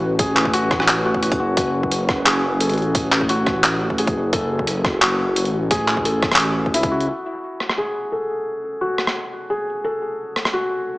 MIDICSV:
0, 0, Header, 1, 5, 480
1, 0, Start_track
1, 0, Key_signature, 3, "minor"
1, 0, Tempo, 344828
1, 264, Time_signature, 4, 2, 24, 8
1, 15284, End_track
2, 0, Start_track
2, 0, Title_t, "Analog synth pad"
2, 0, Program_c, 0, 89
2, 0, Note_on_c, 0, 61, 92
2, 0, Note_on_c, 0, 66, 80
2, 0, Note_on_c, 0, 71, 94
2, 9849, Note_off_c, 0, 61, 0
2, 9866, Note_off_c, 0, 66, 0
2, 9866, Note_on_c, 0, 61, 87
2, 10069, Note_on_c, 0, 66, 87
2, 10510, Note_on_c, 0, 73, 68
2, 11778, Note_off_c, 0, 71, 0
2, 15284, Note_off_c, 0, 61, 0
2, 15284, Note_off_c, 0, 66, 0
2, 15284, Note_off_c, 0, 73, 0
2, 15284, End_track
3, 0, Start_track
3, 0, Title_t, "Felt piano"
3, 0, Program_c, 1, 0
3, 0, Control_c, 1, 64, 127
3, 0, Note_on_c, 1, 66, 82
3, 0, Note_on_c, 1, 68, 77
3, 242, Note_off_c, 1, 66, 0
3, 265, Note_off_c, 1, 68, 0
3, 265, Note_on_c, 1, 68, 82
3, 494, Note_off_c, 1, 68, 0
3, 744, Note_on_c, 1, 66, 106
3, 973, Note_off_c, 1, 66, 0
3, 1465, Note_on_c, 1, 66, 80
3, 1684, Note_off_c, 1, 66, 0
3, 1705, Note_on_c, 1, 66, 76
3, 1922, Note_off_c, 1, 66, 0
3, 1945, Note_on_c, 1, 66, 78
3, 2164, Note_off_c, 1, 66, 0
3, 2185, Note_on_c, 1, 66, 79
3, 3122, Note_off_c, 1, 66, 0
3, 3145, Note_on_c, 1, 68, 80
3, 3373, Note_off_c, 1, 68, 0
3, 3624, Note_on_c, 1, 69, 73
3, 4562, Note_off_c, 1, 69, 0
3, 4585, Note_on_c, 1, 66, 83
3, 5522, Note_off_c, 1, 66, 0
3, 5544, Note_on_c, 1, 68, 74
3, 5773, Note_off_c, 1, 68, 0
3, 6025, Note_on_c, 1, 69, 82
3, 6962, Note_off_c, 1, 69, 0
3, 6986, Note_on_c, 1, 66, 79
3, 7923, Note_off_c, 1, 66, 0
3, 7945, Note_on_c, 1, 68, 88
3, 8174, Note_off_c, 1, 68, 0
3, 8425, Note_on_c, 1, 69, 82
3, 9362, Note_off_c, 1, 69, 0
3, 9385, Note_on_c, 1, 64, 99
3, 9613, Note_off_c, 1, 64, 0
3, 9626, Note_on_c, 1, 66, 78
3, 9843, Note_off_c, 1, 66, 0
3, 9864, Note_on_c, 1, 66, 71
3, 9884, Control_c, 1, 64, 0
3, 10156, Control_c, 1, 64, 127
3, 10802, Note_off_c, 1, 66, 0
3, 10824, Note_on_c, 1, 68, 70
3, 11053, Note_off_c, 1, 68, 0
3, 11304, Note_on_c, 1, 69, 66
3, 12242, Note_off_c, 1, 69, 0
3, 12265, Note_on_c, 1, 66, 70
3, 13202, Note_off_c, 1, 66, 0
3, 13223, Note_on_c, 1, 68, 68
3, 13452, Note_off_c, 1, 68, 0
3, 13703, Note_on_c, 1, 69, 70
3, 14641, Note_off_c, 1, 69, 0
3, 14662, Note_on_c, 1, 66, 72
3, 15284, Note_off_c, 1, 66, 0
3, 15284, End_track
4, 0, Start_track
4, 0, Title_t, "Detuned saw bass"
4, 0, Program_c, 2, 39
4, 0, Note_on_c, 2, 33, 88
4, 1930, Note_off_c, 2, 33, 0
4, 1946, Note_on_c, 2, 30, 91
4, 2167, Note_off_c, 2, 30, 0
4, 2187, Note_on_c, 2, 30, 102
4, 3751, Note_on_c, 2, 33, 89
4, 3771, Note_off_c, 2, 30, 0
4, 5770, Note_off_c, 2, 33, 0
4, 5785, Note_on_c, 2, 30, 87
4, 6007, Note_off_c, 2, 30, 0
4, 6026, Note_on_c, 2, 30, 104
4, 7589, Note_on_c, 2, 33, 89
4, 7610, Note_off_c, 2, 30, 0
4, 9387, Note_on_c, 2, 37, 99
4, 9408, Note_off_c, 2, 33, 0
4, 9851, Note_off_c, 2, 37, 0
4, 15284, End_track
5, 0, Start_track
5, 0, Title_t, "Drums"
5, 265, Note_on_c, 9, 42, 75
5, 266, Note_on_c, 9, 36, 124
5, 404, Note_off_c, 9, 42, 0
5, 405, Note_off_c, 9, 36, 0
5, 505, Note_on_c, 9, 39, 68
5, 632, Note_on_c, 9, 36, 64
5, 644, Note_off_c, 9, 39, 0
5, 745, Note_on_c, 9, 42, 66
5, 772, Note_off_c, 9, 36, 0
5, 884, Note_off_c, 9, 42, 0
5, 986, Note_on_c, 9, 37, 53
5, 987, Note_on_c, 9, 36, 116
5, 1112, Note_off_c, 9, 37, 0
5, 1112, Note_on_c, 9, 37, 65
5, 1126, Note_off_c, 9, 36, 0
5, 1226, Note_on_c, 9, 39, 116
5, 1226, Note_on_c, 9, 42, 77
5, 1251, Note_off_c, 9, 37, 0
5, 1365, Note_off_c, 9, 39, 0
5, 1365, Note_off_c, 9, 42, 0
5, 1593, Note_on_c, 9, 36, 64
5, 1706, Note_on_c, 9, 42, 66
5, 1732, Note_off_c, 9, 36, 0
5, 1832, Note_off_c, 9, 42, 0
5, 1832, Note_on_c, 9, 36, 117
5, 1832, Note_on_c, 9, 42, 37
5, 1971, Note_off_c, 9, 36, 0
5, 1971, Note_off_c, 9, 42, 0
5, 2186, Note_on_c, 9, 36, 123
5, 2186, Note_on_c, 9, 42, 77
5, 2325, Note_off_c, 9, 36, 0
5, 2325, Note_off_c, 9, 42, 0
5, 2552, Note_on_c, 9, 36, 61
5, 2666, Note_on_c, 9, 42, 61
5, 2691, Note_off_c, 9, 36, 0
5, 2805, Note_off_c, 9, 42, 0
5, 2905, Note_on_c, 9, 36, 111
5, 2906, Note_on_c, 9, 37, 55
5, 3044, Note_off_c, 9, 36, 0
5, 3045, Note_off_c, 9, 37, 0
5, 3145, Note_on_c, 9, 39, 112
5, 3145, Note_on_c, 9, 42, 74
5, 3285, Note_off_c, 9, 39, 0
5, 3285, Note_off_c, 9, 42, 0
5, 3626, Note_on_c, 9, 42, 64
5, 3751, Note_off_c, 9, 42, 0
5, 3751, Note_on_c, 9, 42, 35
5, 3807, Note_off_c, 9, 42, 0
5, 3807, Note_on_c, 9, 42, 27
5, 3863, Note_off_c, 9, 42, 0
5, 3863, Note_on_c, 9, 42, 23
5, 3927, Note_off_c, 9, 42, 0
5, 3927, Note_on_c, 9, 42, 19
5, 4067, Note_off_c, 9, 42, 0
5, 4104, Note_on_c, 9, 42, 74
5, 4105, Note_on_c, 9, 36, 123
5, 4243, Note_off_c, 9, 42, 0
5, 4244, Note_off_c, 9, 36, 0
5, 4343, Note_on_c, 9, 39, 62
5, 4471, Note_on_c, 9, 36, 59
5, 4482, Note_off_c, 9, 39, 0
5, 4582, Note_on_c, 9, 42, 65
5, 4610, Note_off_c, 9, 36, 0
5, 4722, Note_off_c, 9, 42, 0
5, 4823, Note_on_c, 9, 37, 52
5, 4825, Note_on_c, 9, 36, 104
5, 4962, Note_off_c, 9, 37, 0
5, 4964, Note_off_c, 9, 36, 0
5, 5062, Note_on_c, 9, 39, 112
5, 5062, Note_on_c, 9, 42, 74
5, 5201, Note_off_c, 9, 39, 0
5, 5201, Note_off_c, 9, 42, 0
5, 5431, Note_on_c, 9, 36, 60
5, 5544, Note_on_c, 9, 42, 67
5, 5570, Note_off_c, 9, 36, 0
5, 5670, Note_off_c, 9, 42, 0
5, 5670, Note_on_c, 9, 42, 36
5, 5671, Note_on_c, 9, 36, 112
5, 5810, Note_off_c, 9, 36, 0
5, 5810, Note_off_c, 9, 42, 0
5, 6025, Note_on_c, 9, 42, 76
5, 6026, Note_on_c, 9, 36, 120
5, 6165, Note_off_c, 9, 36, 0
5, 6165, Note_off_c, 9, 42, 0
5, 6392, Note_on_c, 9, 36, 59
5, 6505, Note_on_c, 9, 42, 62
5, 6531, Note_off_c, 9, 36, 0
5, 6644, Note_off_c, 9, 42, 0
5, 6745, Note_on_c, 9, 37, 55
5, 6746, Note_on_c, 9, 36, 104
5, 6884, Note_off_c, 9, 37, 0
5, 6885, Note_off_c, 9, 36, 0
5, 6984, Note_on_c, 9, 39, 112
5, 6984, Note_on_c, 9, 42, 75
5, 7124, Note_off_c, 9, 39, 0
5, 7124, Note_off_c, 9, 42, 0
5, 7465, Note_on_c, 9, 42, 65
5, 7592, Note_off_c, 9, 42, 0
5, 7592, Note_on_c, 9, 42, 38
5, 7731, Note_off_c, 9, 42, 0
5, 7945, Note_on_c, 9, 42, 82
5, 7946, Note_on_c, 9, 36, 118
5, 8084, Note_off_c, 9, 42, 0
5, 8085, Note_off_c, 9, 36, 0
5, 8185, Note_on_c, 9, 39, 60
5, 8312, Note_on_c, 9, 36, 58
5, 8324, Note_off_c, 9, 39, 0
5, 8425, Note_on_c, 9, 42, 66
5, 8451, Note_off_c, 9, 36, 0
5, 8565, Note_off_c, 9, 42, 0
5, 8665, Note_on_c, 9, 36, 102
5, 8665, Note_on_c, 9, 37, 58
5, 8790, Note_off_c, 9, 37, 0
5, 8790, Note_on_c, 9, 37, 69
5, 8790, Note_on_c, 9, 42, 40
5, 8805, Note_off_c, 9, 36, 0
5, 8846, Note_on_c, 9, 39, 119
5, 8903, Note_off_c, 9, 42, 0
5, 8903, Note_on_c, 9, 42, 78
5, 8930, Note_off_c, 9, 37, 0
5, 8985, Note_off_c, 9, 39, 0
5, 9043, Note_off_c, 9, 42, 0
5, 9272, Note_on_c, 9, 36, 60
5, 9384, Note_on_c, 9, 42, 72
5, 9411, Note_off_c, 9, 36, 0
5, 9510, Note_off_c, 9, 42, 0
5, 9510, Note_on_c, 9, 42, 38
5, 9511, Note_on_c, 9, 36, 106
5, 9650, Note_off_c, 9, 36, 0
5, 9650, Note_off_c, 9, 42, 0
5, 9751, Note_on_c, 9, 42, 38
5, 9890, Note_off_c, 9, 42, 0
5, 10584, Note_on_c, 9, 37, 47
5, 10710, Note_off_c, 9, 37, 0
5, 10710, Note_on_c, 9, 37, 56
5, 10850, Note_off_c, 9, 37, 0
5, 12504, Note_on_c, 9, 37, 48
5, 12629, Note_off_c, 9, 37, 0
5, 12629, Note_on_c, 9, 37, 55
5, 12769, Note_off_c, 9, 37, 0
5, 14423, Note_on_c, 9, 37, 47
5, 14550, Note_off_c, 9, 37, 0
5, 14550, Note_on_c, 9, 37, 56
5, 14689, Note_off_c, 9, 37, 0
5, 15284, End_track
0, 0, End_of_file